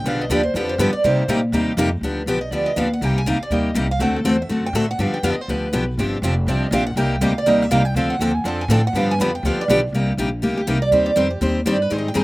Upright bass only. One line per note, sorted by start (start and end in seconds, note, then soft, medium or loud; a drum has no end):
0.04 0.29 B1 medium
0.29 0.53 D#2 medium
0.54 0.78 F2 medium
0.78 0.92 G2 loud
1.04 1.27 C3 medium
1.28 1.52 A#2 medium
1.52 1.76 D#2 loud
1.77 2.00 F2 loud
2.01 2.25 D2 medium
2.26 2.50 B1 medium
2.51 2.76 D2 medium
2.76 3.00 D#2 medium
3.01 3.25 C2 medium
3.26 3.39 D2 medium
3.50 3.74 D#2 medium
3.74 3.99 C2 medium
3.99 4.23 D2 medium
4.24 4.49 E2 medium
4.49 4.72 F#2 medium
4.73 4.98 A2 medium
4.98 5.11 G2 medium
5.12 muted upright bass stroke soft
5.23 5.36 F2 medium
5.38 muted upright bass stroke soft
5.48 5.72 D2 medium
5.73 5.97 B1 medium
5.97 6.21 G1 medium
6.22 6.46 F1 medium
6.47 6.70 C2 medium
6.71 6.95 A#1 medium
6.96 7.20 C2 medium
7.21 7.45 D2 medium
7.46 7.70 D#2 medium
7.71 7.94 C2 medium
7.94 8.19 D2 medium
8.19 8.43 D#2 medium
8.44 8.68 F2 medium
8.68 8.92 A2 medium
8.93 9.17 G2 medium
9.19 9.42 F2 medium
9.43 9.56 D2 medium
9.57 muted upright bass stroke soft
9.68 9.92 B1 medium
9.93 10.17 C2 medium
10.17 10.41 A#1 medium
10.42 10.66 D2 medium
10.67 10.91 C2 medium
10.91 11.15 D#2 medium
11.16 11.40 F2 medium
11.41 11.65 D#2 medium
11.65 11.89 G2 medium
11.91 12.15 G#2 medium
12.15 12.24 G2 medium